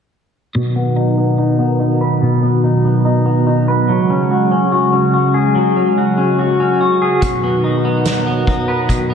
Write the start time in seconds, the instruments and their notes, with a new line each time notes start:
0.55 clean electric guitar B2, analog synth pad D#3 F#3 B3 F#4
0.76 clean electric guitar B3
0.96 clean electric guitar D#4
1.18 clean electric guitar B3
1.38 clean electric guitar D#4
1.59 clean electric guitar B3
1.80 clean electric guitar D#4
2.01 clean electric guitar B4
2.22 clean electric guitar B2
2.43 clean electric guitar B3
2.64 clean electric guitar D#4
2.85 clean electric guitar B3
3.05 clean electric guitar D#4
3.26 clean electric guitar B3
3.47 clean electric guitar D#4
3.68 clean electric guitar B4
3.88 analog synth pad C#3 G#3, clean electric guitar F#3
4.10 clean electric guitar C#4
4.31 clean electric guitar F#4
4.52 clean electric guitar C#4
4.72 clean electric guitar F#4
4.93 clean electric guitar C#4
5.14 clean electric guitar F#4
5.34 clean electric guitar G#4
5.55 clean electric guitar F#3
5.77 clean electric guitar C#4
5.98 clean electric guitar F#4
6.18 clean electric guitar C#4
6.39 clean electric guitar F#4
6.60 clean electric guitar C#4
6.81 clean electric guitar F#4
7.02 clean electric guitar G#4
7.22 clean electric guitar B2, analog synth pad D#3 B3, kick, closed hi-hat
7.43 clean electric guitar B3
7.64 clean electric guitar D#4
7.85 clean electric guitar B3
8.05 clean electric guitar D#4, snare, closed hi-hat
8.27 clean electric guitar B3
8.47 clean electric guitar D#4, kick
8.68 clean electric guitar B4
8.89 clean electric guitar B2, kick, closed hi-hat
9.10 clean electric guitar B3